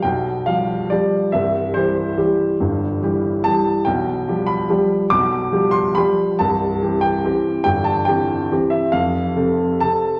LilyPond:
<<
  \new Staff \with { instrumentName = "Upright piano" } { \time 3/4 \key c \major \tempo 4 = 141 g''4 f''4 d''4 | e''4 c''2~ | c''2 a''4 | g''4. b''4. |
d'''4. c'''8 b''4 | a''4. g''4. | g''8 a''8 g''4 r8 e''8 | f''2 a''4 | }
  \new Staff \with { instrumentName = "Upright piano" } { \clef bass \time 3/4 \key c \major <b,, b,>4 <f g g'>4 <f g g'>4 | <c,, c,>4 <e g g'>4 <e g g'>4 | <g,, g,>4 <e g g'>4 <e g g'>4 | <b,, b,>4 <f g g'>4 <f g g'>4 |
<b,, b,>4 <f g g'>4 <f g g'>4 | <c,, c,>4 <e c' g'>4 <e c' g'>4 | <g,, g,>4 <e c' g'>4 <e c' g'>4 | <f,, f,>4 <c c' a'>4 <c c' a'>4 | }
>>